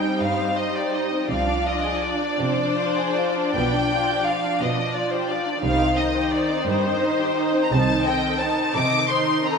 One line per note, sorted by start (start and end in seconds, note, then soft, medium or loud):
0.00 1.27 G3 soft
0.00 0.21 C4 soft
0.00 1.27 D#4 soft
0.00 1.27 C5 soft
0.00 0.20 G5 soft
0.20 1.10 G2 soft
0.20 0.39 G3 soft
0.20 0.57 F5 medium
0.38 0.57 C4 soft
0.56 0.75 D#4 soft
0.56 0.75 D#5 medium
0.74 0.93 G4 soft
0.74 0.94 D5 soft
0.92 1.12 D#4 soft
0.92 1.30 D#5 soft
1.11 1.28 C4 soft
1.29 2.00 C2 soft
1.29 2.19 C3 soft
1.29 5.59 F3 soft
1.29 1.47 C4 soft
1.29 5.63 D4 soft
1.29 5.58 D5 soft
1.29 1.66 F5 medium
1.47 1.66 D4 soft
1.66 1.85 F4 soft
1.66 2.03 D#5 soft
1.85 2.03 G#4 soft
2.02 2.21 F4 soft
2.02 2.39 D5 soft
2.20 2.39 D4 soft
2.38 3.34 C3 soft
2.38 2.58 C4 soft
2.38 3.55 C5 medium
2.57 2.77 D4 soft
2.77 2.97 F4 soft
2.97 3.17 G#4 soft
3.17 3.37 F4 soft
3.35 3.55 D4 soft
3.54 4.23 B1 soft
3.54 4.41 B2 medium
3.54 3.73 B3 soft
3.54 4.24 G5 medium
3.74 3.92 D4 soft
3.93 4.10 F4 soft
4.10 4.27 G4 soft
4.26 4.44 F4 soft
4.26 4.60 F5 medium
4.44 4.61 D4 soft
4.60 5.44 B2 medium
4.60 4.78 B3 soft
4.60 4.95 D#5 medium
4.79 4.95 D4 soft
4.95 5.12 F4 soft
4.95 5.12 D5 medium
5.11 5.29 G4 soft
5.11 5.29 C5 medium
5.28 5.46 F4 soft
5.28 5.63 D5 medium
5.47 5.63 D4 soft
5.62 6.29 C2 medium
5.62 6.48 C3 medium
5.62 7.68 D#3 soft
5.62 5.80 G3 soft
5.62 7.68 D#4 soft
5.62 7.68 C5 soft
5.62 5.96 F5 medium
5.81 5.98 C4 soft
5.96 6.15 D#4 soft
5.96 6.32 D#5 medium
6.15 6.33 G4 soft
6.32 6.50 D#4 soft
6.32 6.67 D5 medium
6.51 6.68 C4 soft
6.68 7.52 G2 medium
6.68 6.85 G3 soft
6.68 7.63 C5 medium
6.85 7.03 C4 soft
7.03 7.20 D#4 soft
7.20 7.37 G4 soft
7.37 7.54 D#4 soft
7.53 7.71 C4 soft
7.64 7.71 A#5 soft
7.71 8.36 C2 medium
7.71 8.60 C3 medium
7.71 8.04 D#3 soft
7.71 8.04 D#4 soft
7.71 8.03 C5 soft
7.71 8.06 A5 medium
8.04 8.38 D#3 soft
8.04 8.40 C4 soft
8.04 8.39 A4 soft
8.04 8.39 D#5 soft
8.04 8.40 G5 medium
8.38 8.73 D#3 soft
8.38 8.74 D#4 soft
8.38 8.74 C5 soft
8.38 8.74 A5 medium
8.74 9.58 C3 medium
8.74 9.08 D#3 soft
8.74 9.09 C4 soft
8.74 9.09 A4 soft
8.74 9.09 D#5 soft
8.74 9.09 D6 medium
9.08 9.42 D#3 soft
9.08 9.41 D#4 soft
9.08 9.41 C5 soft
9.08 9.44 C6 medium
9.44 9.58 D#3 soft
9.44 9.58 C4 soft
9.44 9.58 A4 soft
9.44 9.58 D#5 soft
9.44 9.58 A#5 medium